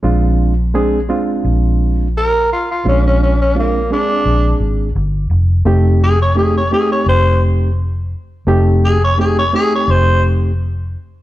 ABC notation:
X:1
M:4/4
L:1/16
Q:1/4=85
K:Bbmix
V:1 name="Tenor saxophone"
z12 B2 F F | _D D D D B,2 =D4 z6 | z2 A _d A d A d c2 z6 | z2 A _d A d A d c2 z6 |]
V:2 name="Reed electric piano"
[A,CDF]2 z2 [A,CDA]2 [A,CDF]6 z4 | [A,CDF]2 z2 [A,CDF]2 [A,CDA]6 z4 | [=A,CEG]2 z2 [A,CEG]2 [A,CEG]6 z4 | [=A,CEG]2 z2 [A,CEG]2 [A,CEG]6 z4 |]
V:3 name="Fingered electric bass" clef=bass
B,,,8 B,,,8 | B,,,8 B,,,2 A,,,2 G,,,2 F,,,2 | F,,,8 F,,,8 | F,,,8 F,,,8 |]